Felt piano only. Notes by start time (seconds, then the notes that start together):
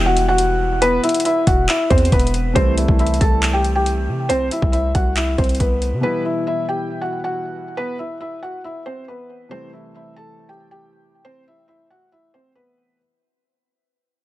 0.06 F#4 F#5
0.29 F#4 F#5
0.82 B3 B4
1.04 E4 E5
1.25 E4 E5
1.47 F#4 F#5
1.69 E4 E5
1.90 C4 C5
2.13 B3 B4
2.55 C4 C5
2.77 E4 E5
3.00 E4 E5
3.21 A4 A5
3.53 G4 G5
3.75 G4 G5
4.29 C4 C5
4.52 E4 E5
4.72 E4 E5
4.95 F#4 F#5
5.17 E4 E5
5.38 C4 C5
5.60 B3 B4
6.03 B3 B4
6.25 E4 E5
6.47 E4 E5
6.69 G4 G5
7.01 F#4 F#5
7.24 F#4 F#5
7.77 B3 B4
7.99 E4 E5
8.21 E4 E5
8.43 F#4 F#5
8.64 E4 E5
8.86 C4 C5
9.08 B3 B4
9.51 C4 C5
9.73 E4 E5
9.95 E4 E5
10.16 A4 A5
10.49 G4 G5
10.71 G4 G5
11.25 C4 C5
11.48 E4 E5
11.68 E4 E5
11.90 F#4 F#5
12.12 E4 E5
12.34 C4 C5
12.55 B3 B4